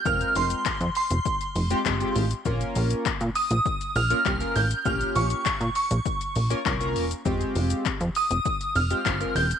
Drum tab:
HH |-xox-xox-xox-xox|-xox-xox-xox-xox|-xox-xox-xox-xox|-xox-xox-xox-xox|
SH |xxxxxxxxxxxxxxxx|xxxxxxxxxxxxxxxx|xxxxxxxxxxxxxxxx|xxxxxxxxxxxxxxxx|
CP |----x-------x---|----x-------x---|----x-------x---|----x-------x---|
BD |o---o---o---o---|o---o---o---o---|o---o---o---o---|o---o---o---o---|